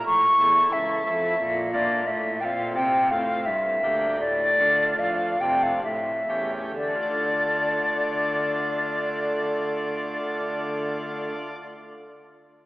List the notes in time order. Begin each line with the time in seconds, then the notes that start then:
0.06 A2 C#6
0.40 E2 E4 A4
0.72 C#2 E5
1.06 F2 E4 A4
1.40 A#2
1.73 A#3 D4 F4 D5
2.07 A2 E5
2.41 A#2 C4 F4 G5
2.45 F5
2.75 C3 G5
3.11 A2 C4 F4 F5
3.46 G2 E5
3.83 D2 A#3 D4 G4
4.20 A2 D5
4.59 D3 A3 D4 F4
4.99 F3 F5
5.40 C3 A3 D4 F4 G5
5.63 F5
5.84 A2 E5
6.29 E2 A3 C#4 G4
6.74 D3 D5
6.81 A3
6.88 D4
6.95 F4
7.02 D5